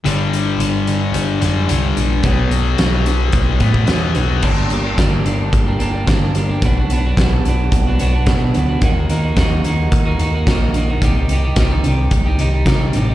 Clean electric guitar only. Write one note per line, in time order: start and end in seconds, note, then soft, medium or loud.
0.05 0.31 G2 medium
0.05 0.31 D3 medium
0.05 0.32 G3 medium
0.33 0.57 G2 medium
0.33 0.58 D3 medium
0.60 0.85 G2 medium
0.60 0.85 D3 medium
0.87 1.12 G2 soft
0.87 1.12 D3 medium
1.14 1.39 G2 medium
1.14 1.39 D3 medium
1.40 1.66 G2 medium
1.40 1.66 D3 medium
1.68 1.94 G2 medium
1.68 1.94 D3 medium
1.97 2.22 G2 medium
1.97 2.22 D3 medium
2.24 2.50 B2 medium
2.24 2.50 F#3 medium
2.24 2.51 B3 medium
2.52 2.76 B2 medium
2.52 2.77 F#3 medium
2.80 3.04 B2 medium
2.80 3.04 F#3 medium
3.08 3.32 B2 medium
3.08 3.32 F#3 medium
3.34 3.59 B2 medium
3.34 3.59 F#3 medium
3.61 3.86 B2 medium
3.61 3.86 F#3 medium
3.89 4.13 B2 medium
3.89 4.14 F#3 medium
4.16 4.41 B2 medium
4.16 4.41 F#3 medium
4.42 4.84 G2 medium
4.42 4.84 D3 medium
4.42 4.58 G3 medium
4.42 4.58 A#3 medium
4.42 4.57 D4 medium
4.42 4.56 G4 medium
4.57 4.70 G3 soft
4.57 4.70 A#3 soft
4.57 4.73 D4 medium
4.57 4.72 G4 medium
4.71 4.86 G3 medium
4.71 4.85 A#3 medium
4.71 4.85 D4 medium
4.71 4.83 G4 medium
4.84 4.98 G3 medium
4.84 4.98 A#3 medium
4.84 5.00 D4 medium
4.84 5.00 G4 medium
4.98 5.53 G2 medium
4.98 5.53 D3 medium
4.98 5.24 G3 medium
4.98 5.25 A#3 medium
4.98 5.26 D4 medium
4.98 5.26 G4 medium
5.25 5.68 G3 medium
5.25 5.67 A#3 medium
5.25 5.66 D4 medium
5.25 5.66 G4 medium
5.67 5.78 G3 soft
5.67 5.79 A#3 soft
5.67 5.80 D4 soft
5.67 5.81 G4 medium
5.79 5.95 G3 medium
5.79 5.94 A#3 medium
5.79 5.94 D4 medium
5.79 5.92 G4 medium
5.94 6.07 G3 soft
5.94 6.07 A#3 soft
5.94 6.08 D4 medium
5.94 6.08 G4 medium
6.07 6.60 G2 medium
6.07 6.61 D3 medium
6.07 6.34 G3 medium
6.07 6.35 A#3 medium
6.07 6.36 D4 medium
6.07 6.37 G4 medium
6.35 6.51 G3 medium
6.35 6.50 A#3 medium
6.35 6.49 D4 medium
6.35 6.48 G4 medium
6.49 6.62 G3 soft
6.49 6.62 A#3 soft
6.49 6.62 D4 medium
6.49 6.61 G4 medium
6.63 7.04 B2 medium
6.63 6.91 F#3 medium
6.63 6.79 B3 medium
6.63 6.78 D4 medium
6.63 6.77 F#4 medium
6.78 6.92 B3 soft
6.78 6.92 D4 soft
6.78 6.94 F#4 medium
6.92 7.20 F#3 medium
6.92 7.07 B3 medium
6.92 7.06 D4 medium
6.92 7.06 F#4 medium
7.06 7.20 B3 soft
7.06 7.20 D4 medium
7.06 7.21 F#4 medium
7.19 7.73 B2 medium
7.19 7.47 F#3 medium
7.19 7.47 B3 medium
7.19 7.48 D4 medium
7.19 7.49 F#4 medium
7.47 7.99 F#3 soft
7.47 7.88 B3 medium
7.47 7.87 D4 medium
7.47 7.86 F#4 medium
7.87 8.00 B3 soft
7.87 8.01 D4 soft
7.87 8.01 F#4 medium
8.00 8.26 F#3 medium
8.00 8.14 B3 medium
8.00 8.14 D4 medium
8.00 8.12 F#4 medium
8.13 8.27 B3 soft
8.13 8.27 D4 medium
8.13 8.28 F#4 medium
8.26 8.80 B2 medium
8.26 8.54 F#3 medium
8.26 8.55 B3 medium
8.26 8.56 D4 medium
8.26 8.57 F#4 medium
8.55 8.80 F#3 medium
8.55 8.71 B3 medium
8.55 8.69 D4 medium
8.55 8.67 F#4 medium
8.69 8.82 B3 medium
8.69 8.81 D4 medium
8.69 8.80 F#4 medium
8.82 9.08 D#3 medium
8.82 8.98 A#3 medium
8.82 8.97 D#4 medium
8.82 8.95 F#4 medium
8.97 9.09 A#3 soft
8.97 9.11 D#4 soft
8.97 9.11 F#4 medium
9.10 9.36 D#3 medium
9.10 9.24 A#3 medium
9.10 9.25 D#4 medium
9.10 9.22 F#4 medium
9.23 9.37 A#3 soft
9.23 9.38 D#4 medium
9.23 9.38 F#4 medium
9.37 9.64 D#3 medium
9.37 9.64 A#3 medium
9.37 9.66 D#4 medium
9.37 9.66 F#4 medium
9.65 10.18 D#3 medium
9.65 10.06 A#3 medium
9.65 10.06 D#4 medium
9.65 10.04 F#4 medium
10.05 10.18 A#3 soft
10.05 10.19 D#4 medium
10.05 10.20 F#4 medium
10.19 10.47 D#3 medium
10.19 10.35 A#3 medium
10.19 10.34 D#4 medium
10.19 10.33 F#4 medium
10.34 10.49 A#3 soft
10.34 10.49 D#4 medium
10.34 10.50 F#4 medium
10.48 10.74 D#3 medium
10.48 10.75 A#3 medium
10.48 10.76 D#4 medium
10.48 10.77 F#4 medium
10.75 11.00 D#3 medium
10.75 10.91 A#3 medium
10.75 10.89 D#4 medium
10.75 10.88 F#4 medium
10.89 11.02 A#3 soft
10.89 11.01 D#4 medium
10.89 11.00 F#4 medium
11.03 11.43 C3 medium
11.03 11.29 D#3 medium
11.03 11.18 G3 medium
11.03 11.16 D#4 medium
11.03 11.16 G4 medium
11.16 11.31 G3 soft
11.16 11.31 D#4 medium
11.16 11.32 G4 medium
11.31 11.57 D#3 medium
11.31 11.46 G3 medium
11.31 11.44 D#4 medium
11.31 11.43 G4 medium
11.44 11.59 G3 soft
11.44 11.59 D#4 medium
11.44 11.60 G4 medium
11.58 12.11 C3 medium
11.58 11.84 D#3 medium
11.58 11.86 G3 medium
11.58 11.86 D#4 medium
11.58 11.88 G4 medium
11.85 12.38 D#3 medium
11.85 12.27 G3 medium
11.85 12.26 D#4 medium
11.85 12.25 G4 medium
12.26 12.39 G3 soft
12.26 12.40 D#4 medium
12.26 12.40 G4 medium
12.40 12.66 D#3 medium
12.40 12.55 G3 medium
12.40 12.54 D#4 medium
12.40 12.53 G4 medium
12.54 12.67 G3 soft
12.54 12.67 D#4 soft
12.54 12.68 G4 medium
12.67 13.15 C3 medium
12.67 12.93 D#3 medium
12.67 12.94 G3 medium
12.67 12.95 D#4 medium
12.67 12.96 G4 medium
12.94 13.15 D#3 medium
12.94 13.11 G3 medium
12.94 13.09 D#4 medium
12.94 13.08 G4 medium
13.09 13.15 D#4 medium
13.09 13.15 G4 medium